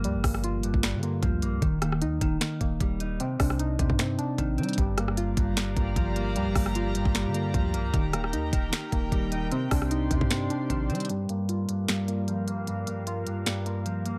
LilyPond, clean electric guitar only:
\new Staff \with { instrumentName = "Clean electric guitar" } { \clef bass \time 4/4 \key g \minor \tempo 4 = 152 <g, f bes>8 g,4 g,8 g,4 f8 bes8 | ees8 ees4 ees8 ees4 g8 ees'8 | c8 c4 c8 c4 ees8 c'8 | g,8 g,4 g,8 g,4 f8 bes8 |
g,8 g,4 g,8 g,4 f8 bes8 | ees8 ees4 ees8 ees4 g8 ees'8 | c8 c4 c8 c4 ees8 c'8 | g,8 g,4 g,8 g,4 f8 bes8 |
g,8 g,4 g,8 g,4 f8 bes8 | }